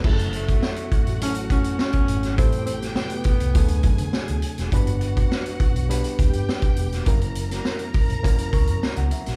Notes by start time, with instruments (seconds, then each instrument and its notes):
0.04 fingered electric bass F#1, reed electric piano F#3 A3 C#4 E4 G#4, string section F#4 F#5, kick, crash
0.13 reed electric piano A4
0.19 closed hi-hat
0.33 alto saxophone A3, closed hi-hat
0.49 kick, snare, closed hi-hat
0.62 snare
0.76 closed hi-hat
0.92 muted fingered electric bass stroke, kick, closed hi-hat
1.07 fingered electric bass A1, closed hi-hat
1.21 reed electric piano F#3 A3 C#4 E4 A4, alto saxophone C#4, closed hi-hat
1.35 closed hi-hat
1.50 alto saxophone C#4, kick, closed hi-hat
1.64 closed hi-hat
1.79 alto saxophone C#4, snare
1.93 kick, closed hi-hat
2.08 fingered electric bass G#1, closed hi-hat
2.23 snare, closed hi-hat
2.37 fingered electric bass A1, reed electric piano C3 G3 A3 E4 A4, alto saxophone C4, string section G4 G5, kick, closed hi-hat
2.52 closed hi-hat
2.66 alto saxophone C4, closed hi-hat
2.82 snare, closed hi-hat
2.95 alto saxophone B3, snare
3.10 closed hi-hat
3.24 muted fingered electric bass stroke, kick, closed hi-hat
3.40 fingered electric bass C2, closed hi-hat
3.55 fingered electric bass D2, reed electric piano C3 F#3 A3 D4 A4, string section G#4 G#5, kick, closed hi-hat
3.68 closed hi-hat
3.83 fingered electric bass F#2, kick, closed hi-hat
3.98 fingered electric bass D3, closed hi-hat
4.13 muted fingered electric bass stroke, snare
4.28 fingered electric bass D2, closed hi-hat
4.42 closed hi-hat
4.58 fingered electric bass E1, snare, closed hi-hat
4.72 fingered electric bass G1, reed electric piano G3 B3 D4 F#4 B4, string section F#4 F#5, kick, closed hi-hat
4.87 closed hi-hat
5.01 closed hi-hat
5.17 kick, closed hi-hat
5.31 snare
5.46 closed hi-hat
5.60 muted fingered electric bass stroke, kick, closed hi-hat
5.74 fingered electric bass B1, closed hi-hat
5.89 reed electric piano G3 B3 D4 G4 B4, closed hi-hat
6.04 closed hi-hat
6.19 fingered electric bass D2, string section G4 G5, kick, closed hi-hat
6.33 fingered electric bass G2, closed hi-hat
6.49 snare
6.62 kick, closed hi-hat
6.76 fingered electric bass E1, closed hi-hat
6.92 snare, closed hi-hat
7.06 fingered electric bass F#1, reed electric piano F#3 A#3 C#4 E4 A#4, string section A#4 A#5, kick, closed hi-hat
7.21 closed hi-hat
7.35 closed hi-hat
7.51 snare, closed hi-hat
7.65 snare
7.79 closed hi-hat
7.94 muted fingered electric bass stroke, kick, open hi-hat
8.10 fingered electric bass A#1, closed hi-hat
8.23 reed electric piano F#3 A#3 C#4 E4 A#4, kick, closed hi-hat
8.38 closed hi-hat
8.53 fingered electric bass C#2, reed electric piano C#6, kick, closed hi-hat
8.67 fingered electric bass F#2, closed hi-hat
8.83 reed electric piano A#5, muted fingered electric bass stroke, snare
8.96 fingered electric bass C#2, reed electric piano F#5, closed hi-hat
9.11 reed electric piano E5, closed hi-hat
9.26 fingered electric bass A#1, snare, closed hi-hat